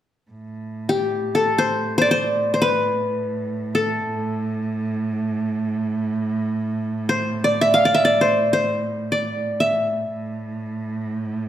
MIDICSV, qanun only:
0, 0, Header, 1, 2, 480
1, 0, Start_track
1, 0, Tempo, 500000
1, 11027, End_track
2, 0, Start_track
2, 0, Title_t, "Qanun"
2, 0, Program_c, 0, 107
2, 855, Note_on_c, 0, 67, 61
2, 1295, Note_on_c, 0, 69, 61
2, 1521, Note_on_c, 0, 72, 70
2, 1896, Note_off_c, 0, 72, 0
2, 1900, Note_on_c, 0, 72, 74
2, 1935, Note_on_c, 0, 74, 66
2, 2023, Note_off_c, 0, 72, 0
2, 2027, Note_on_c, 0, 72, 76
2, 2062, Note_off_c, 0, 67, 0
2, 2419, Note_off_c, 0, 69, 0
2, 2432, Note_off_c, 0, 72, 0
2, 2436, Note_on_c, 0, 72, 54
2, 2512, Note_on_c, 0, 71, 67
2, 2569, Note_off_c, 0, 72, 0
2, 2881, Note_off_c, 0, 74, 0
2, 3559, Note_off_c, 0, 71, 0
2, 3599, Note_on_c, 0, 69, 59
2, 5780, Note_off_c, 0, 69, 0
2, 6807, Note_on_c, 0, 72, 67
2, 7144, Note_on_c, 0, 74, 67
2, 7309, Note_on_c, 0, 76, 71
2, 7429, Note_on_c, 0, 77, 80
2, 7487, Note_off_c, 0, 76, 0
2, 7534, Note_off_c, 0, 74, 0
2, 7538, Note_on_c, 0, 74, 68
2, 7627, Note_on_c, 0, 76, 76
2, 7685, Note_off_c, 0, 77, 0
2, 7722, Note_off_c, 0, 74, 0
2, 7726, Note_on_c, 0, 74, 69
2, 7823, Note_off_c, 0, 72, 0
2, 7883, Note_on_c, 0, 72, 65
2, 8186, Note_off_c, 0, 72, 0
2, 8189, Note_on_c, 0, 72, 68
2, 8509, Note_off_c, 0, 76, 0
2, 8672, Note_off_c, 0, 74, 0
2, 8754, Note_on_c, 0, 74, 63
2, 9205, Note_off_c, 0, 72, 0
2, 9218, Note_on_c, 0, 76, 63
2, 9700, Note_off_c, 0, 74, 0
2, 10751, Note_off_c, 0, 76, 0
2, 11027, End_track
0, 0, End_of_file